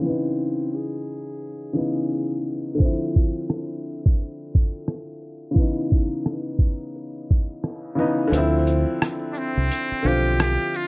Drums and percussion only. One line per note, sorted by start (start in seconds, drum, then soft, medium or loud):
2.80 kick medium
2.80 closed hi-hat medium
3.15 kick medium
3.15 closed hi-hat soft
3.50 cross-stick loud
3.50 closed hi-hat medium
4.06 kick medium
4.20 closed hi-hat medium
4.55 kick medium
4.87 cross-stick loud
4.87 closed hi-hat medium
5.22 closed hi-hat soft
5.56 kick loud
5.56 closed hi-hat medium
5.91 kick medium
5.91 closed hi-hat soft
6.26 cross-stick loud
6.26 closed hi-hat medium
6.59 kick medium
6.95 closed hi-hat medium
7.30 kick medium
7.63 cross-stick medium
7.63 closed hi-hat medium
7.99 closed hi-hat soft
8.33 closed hi-hat medium
8.67 closed hi-hat soft
8.67 shaker soft
9.02 cross-stick loud
9.02 closed hi-hat medium
9.34 shaker soft
9.71 closed hi-hat medium
10.06 shaker soft
10.40 cross-stick loud
10.40 closed hi-hat medium
10.75 closed hi-hat soft
10.75 shaker soft